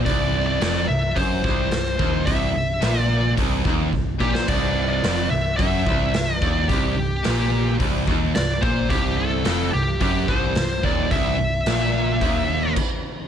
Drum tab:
CC |----------------|----------------|x---------------|----------------|
HH |o---o---o---o---|o---o---o-------|o---o---o---o---|o---o---o---o---|
SD |----o-------o---|----o----------o|----o-------o---|----o-------o---|
BD |o-------o-o---o-|o-------o-o-o-o-|o-------o-o---o-|o-------o-o---o-|

CC |----------------|------------x---|
HH |o---o---o---o---|o---o---o-------|
SD |----o-------o---|----o-----------|
BD |o-------o-o---o-|o-------o---o---|